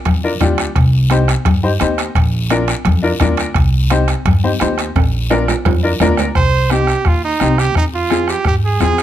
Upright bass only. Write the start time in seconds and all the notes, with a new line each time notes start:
0.06 F2
0.41 D2
0.76 C2
1.45 G2
1.81 D#2
2.15 A#1
2.85 F2
3.20 D2
3.55 C2
4.25 G2
4.61 D#2
4.96 A#1
5.65 F2
6.00 D2
6.35 C2
7.05 D#2
7.41 C2
7.76 F2
8.45 G#2
8.80 F2